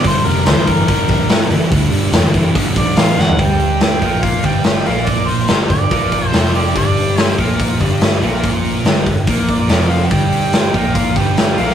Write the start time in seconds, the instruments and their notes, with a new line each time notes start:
0.04 picked electric bass G1, distorted electric guitar G2 D3, harmonica C5, kick, open hi-hat
0.25 picked electric bass F1, distorted electric guitar G2 D3, harmonica A#4, open hi-hat
0.46 picked electric bass D2, distorted electric guitar G2 E3, harmonica C5, snare, open hi-hat
0.56 picked electric bass G1
0.66 distorted electric guitar G2 E3, harmonica A#4, kick, open hi-hat
0.87 distorted electric guitar G2 D3, kick, open hi-hat
1.08 picked electric bass A#1, distorted electric guitar G2 D3, kick, open hi-hat
1.29 distorted electric guitar G2 E3, snare, open hi-hat
1.50 picked electric bass G1, distorted electric guitar G2 E3, open hi-hat
1.71 picked electric bass D2, distorted electric guitar G2 D3, kick, open hi-hat
1.91 picked electric bass G1, distorted electric guitar G2 D3, open hi-hat
2.13 picked electric bass F1, distorted electric guitar G2 E3, snare, open hi-hat
2.24 picked electric bass G1
2.34 distorted electric guitar G2 E3, kick, open hi-hat
2.55 distorted electric guitar G2 D3, kick, open hi-hat
2.76 picked electric bass A#1, distorted electric guitar G2 D3, harmonica D5, kick, open hi-hat
2.97 picked electric bass A1, distorted electric guitar G2 E3, harmonica F5, snare, open hi-hat
3.18 picked electric bass G1, distorted electric guitar G2 E3, harmonica F#5, snare
3.29 floor tom
3.38 picked electric bass G1, distorted electric guitar G2 G3, harmonica G5, kick, open hi-hat
3.60 open hi-hat
3.81 snare, open hi-hat
4.01 picked electric bass A#1, distorted electric guitar A#2 A#3, kick, open hi-hat
4.23 harmonica F5, kick, open hi-hat
4.43 picked electric bass G1, distorted electric guitar G2 G3, harmonica G5, kick, open hi-hat
4.64 harmonica G5, snare, open hi-hat
4.86 picked electric bass A#1, distorted electric guitar A#2 A#3, harmonica F5, open hi-hat
5.06 harmonica D5, kick, open hi-hat
5.28 harmonica C5, open hi-hat
5.48 picked electric bass G1, distorted electric guitar G2 G3, harmonica C5, snare, open hi-hat
5.70 picked electric bass G1, distorted electric guitar G2, harmonica D5, kick, open hi-hat
5.91 picked electric bass A#1, distorted electric guitar A#2 A#3, kick, open hi-hat
6.12 kick, open hi-hat
6.28 distorted electric guitar F2, harmonica C5
6.32 picked electric bass F1, distorted electric guitar F3, snare, open hi-hat
6.55 harmonica D5, open hi-hat
6.75 picked electric bass G1, distorted electric guitar G2 G3, harmonica D5, kick, open hi-hat
6.97 open hi-hat
7.17 harmonica C5, snare, open hi-hat
7.37 picked electric bass A#1, distorted electric guitar A#2 A#3, kick, open hi-hat
7.60 kick, open hi-hat
7.78 picked electric bass G1, distorted electric guitar G2 G3, kick, open hi-hat
8.01 snare, open hi-hat
8.22 picked electric bass A#1, distorted electric guitar A#2 A#3, open hi-hat
8.43 kick, open hi-hat
8.65 open hi-hat
8.85 picked electric bass G1, distorted electric guitar G2 G3, snare, open hi-hat
9.06 picked electric bass G1, distorted electric guitar G2, kick, open hi-hat
9.27 picked electric bass A#1, distorted electric guitar A#2 A#3, kick, open hi-hat
9.48 harmonica D5, kick, open hi-hat
9.68 picked electric bass F1, distorted electric guitar F2 F3, snare, open hi-hat
9.90 harmonica F5, open hi-hat
10.06 harmonica F#5
10.10 picked electric bass G1, distorted electric guitar G2 G3, harmonica G5, kick, open hi-hat
10.32 open hi-hat
10.53 snare, open hi-hat
10.73 picked electric bass A#1, distorted electric guitar A#2 A#3, kick, open hi-hat
10.95 harmonica F5, kick, open hi-hat
11.16 picked electric bass G1, distorted electric guitar G2 G3, harmonica G5, kick, open hi-hat
11.37 snare, open hi-hat
11.58 picked electric bass A#1, distorted electric guitar A#2 A#3, harmonica F5, open hi-hat
11.68 snare